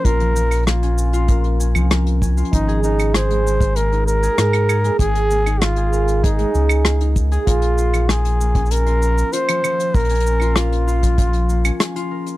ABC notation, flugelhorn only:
X:1
M:4/4
L:1/8
Q:1/4=97
K:Bbdor
V:1 name="Flugelhorn"
B2 F4- F z | E E c2 B B3 | A2 F2 E3 z | F2 A2 B2 c2 |
B2 F4- F z |]